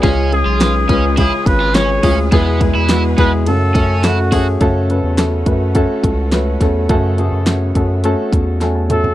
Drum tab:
RD |x-x-x-x-x-x-x-x-|x-x-x-x-x-x-x-x-|----------------|----------------|
HH |--------------o-|--------------o-|x-x-x-x-x-x-x-x-|x-x-x-x-x-x-x-x-|
SD |----o-------o-o-|----o-------o-o-|----o-------o-o-|----o-------o---|
T2 |----------------|----------------|----------------|--------------o-|
FT |----------------|----------------|----------------|---------------o|
BD |o-----o-o-o---o-|o-o---o---o---o-|o-----o-o-o---o-|o-----o---o-----|